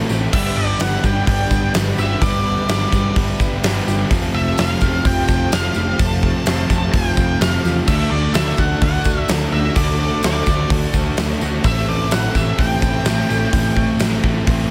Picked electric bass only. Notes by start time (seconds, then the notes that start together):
0.10 A1
0.33 G1
0.57 G1
0.81 G1
1.04 G1
1.28 G1
1.51 G1
1.75 G1
1.98 G1
2.22 G1
2.69 G1
2.93 G1
3.17 G1
3.40 G1
3.63 G1
3.87 G1
4.11 F1
4.34 F1
4.58 F1
4.82 F1
5.05 F1
5.29 F1
5.52 F1
5.76 F1
6.00 F1
6.47 F1
6.70 F1
6.94 F1
7.17 F1
7.41 F1
7.65 E2
7.88 D2
8.11 D2
8.35 D2
8.58 D2
8.82 D2
9.06 D2
9.29 D2
9.52 D2
9.76 D2
10.24 D2
10.47 D2
10.70 D2
10.94 D2
11.18 D2
11.42 D2
11.65 A1
11.88 A1
12.12 A1
12.35 A1
12.59 A1
12.82 A1
13.05 A1
13.30 A1
13.53 A1
14.00 A1
14.24 A1
14.47 A1